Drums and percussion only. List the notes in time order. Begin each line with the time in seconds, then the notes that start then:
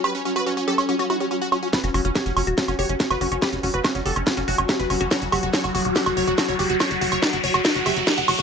0.04 high woodblock
0.36 high woodblock
0.78 high woodblock
1.10 high woodblock
1.52 high woodblock
1.73 kick, snare, closed hi-hat
1.84 closed hi-hat
1.94 open hi-hat, high woodblock
2.05 closed hi-hat
2.15 kick, snare, closed hi-hat
2.26 closed hi-hat
2.37 open hi-hat, high woodblock
2.47 closed hi-hat
2.58 kick, snare, closed hi-hat
2.68 closed hi-hat, high woodblock
2.79 open hi-hat
2.89 closed hi-hat
3.00 kick, snare, closed hi-hat
3.11 closed hi-hat, high woodblock
3.21 open hi-hat
3.32 closed hi-hat
3.42 kick, snare, closed hi-hat, high woodblock
3.53 closed hi-hat
3.63 open hi-hat
3.74 closed hi-hat
3.84 kick, snare, closed hi-hat, high woodblock
3.95 closed hi-hat
4.06 open hi-hat
4.16 closed hi-hat, high woodblock
4.27 kick, snare, closed hi-hat
4.37 closed hi-hat
4.48 open hi-hat
4.58 closed hi-hat, high woodblock
4.69 kick, snare, closed hi-hat
4.80 closed hi-hat
4.90 open hi-hat, high woodblock
5.01 closed hi-hat
5.11 kick, snare, closed hi-hat
5.22 closed hi-hat
5.32 open hi-hat, high woodblock
5.43 closed hi-hat
5.54 kick, snare, closed hi-hat
5.64 closed hi-hat, high woodblock
5.75 open hi-hat
5.85 closed hi-hat
5.96 kick, snare, closed hi-hat
6.06 closed hi-hat, high woodblock
6.17 open hi-hat
6.27 closed hi-hat
6.38 kick, snare, closed hi-hat, high woodblock
6.49 closed hi-hat
6.59 open hi-hat
6.70 closed hi-hat
6.80 kick, snare, closed hi-hat, high woodblock
6.91 closed hi-hat
7.01 open hi-hat
7.12 closed hi-hat, high woodblock
7.22 kick, snare, closed hi-hat
7.33 closed hi-hat
7.44 open hi-hat
7.54 closed hi-hat, high woodblock
7.65 kick, snare, closed hi-hat
7.75 closed hi-hat
7.86 open hi-hat, high woodblock
7.96 closed hi-hat
8.07 kick, snare, closed hi-hat
8.18 closed hi-hat
8.28 open hi-hat, high woodblock
8.39 closed hi-hat